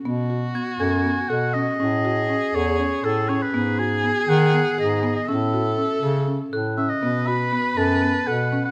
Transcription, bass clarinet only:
\new Staff \with { instrumentName = "Bass clarinet" } { \clef bass \time 7/8 \key b \mixolydian \tempo 4 = 120 b,4. fis,4 b,4 | a,4. e,4 a,4 | gis,4. dis4 gis,4 | a,4. cis4 a,4 |
b,4. fis,4 b,4 | }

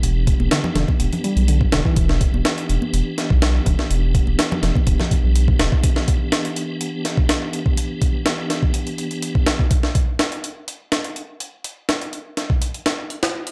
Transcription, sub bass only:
\new Staff \with { instrumentName = "Sub bass" } { \clef bass \time 4/4 \key e \minor \tempo 4 = 124 e,,8 r16 e,,16 r8 e,,16 r16 e,,16 r8 b,,8 r16 e,,16 r16 | e,,8 r16 e,,16 r8 e,,16 r16 e,,16 r8 b,,8 r16 e,,16 r16 | e,,8 r16 e,,16 r8 e,,16 r16 e,,16 r8 b,,8 r16 e,,16 r16 | r1 |
r1 | r1 | r1 | }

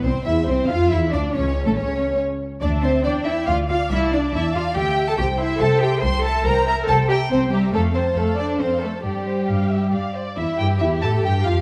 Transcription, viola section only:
\new Staff \with { instrumentName = "Viola section" } { \time 3/4 \key d \dorian \tempo 4 = 140 << { c'8 e'8 c'8 f'8 e'8 d'8 | cis'8. a16 cis'4 r4 | a''4 g''4 f''4 | a''2 g''4 |
\key c \major g''8 c'''8 g''8 c'''8 g''8 c'''8 | g''8 bes''8 g''8 bes''8 g''8 bes''8 | f''8 a''8 f''8 a''8 f''8 a''8 | d''8 c''8 f''8 e''8 d''8 c''8 |
e'8 g'8 e'8 a'8 g'8 f'8 | } \\ { r2. | r2. | e''4 d''4 d''4~ | d''2 e''4 |
c''8 e''8 c''8 e''8 c''8 e''8 | c''8 e''8 c''8 e''8 c''8 e''8 | a'8 c''8 a'8 c''8 a'8 c''8 | d''8 c''8 r2 |
r2. | } >> }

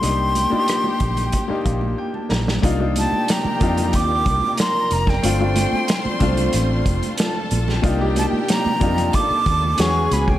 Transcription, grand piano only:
\new Staff \with { instrumentName = "Grand piano" } { \time 4/4 \key c \dorian \tempo 4 = 92 << { r2 r8 f''8 g''16 a''16 bes''8 | r1 | r1 | r1 | } \\ { <bes d' ees' g'>8 r16 <bes d' ees' f' g'>4~ <bes d' ees' f' g'>16 r16 <bes d' ees' g'>4. r16 | <bes d' ees' f'>16 <bes d' ees' f'>4 r16 <bes d' ees' f'>4.~ <bes d' ees' f'>16 r8. | <a c' d' f'>16 <a c' d' f'>4 r16 <a c' d' f'>4.~ <a c' d' f'>16 r8. | <bes d' ees' f'>16 <bes d' ees' g'>4 r16 <bes d' ees' f'>4. <b cis' fis' gis'>8. r16 | } >> }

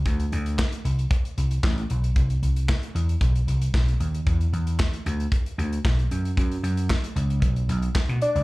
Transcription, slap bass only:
\new Staff \with { instrumentName = "Slap bass" } { \clef bass \time 4/4 \key c \lydian \tempo 4 = 114 d,8 d,8. r16 c,8 r8 c,8 a,,8 b,,8 | c,8 c,8. r16 e,8 b,,8 c,8 b,,8 dis,8 | e,8 e,8. r16 d,8 r8 d,8 b,,8 fis,8 | fis,8 fis,8. r16 cis,8 b,,8 b,,8 r16 b,16 r16 cis,16 | }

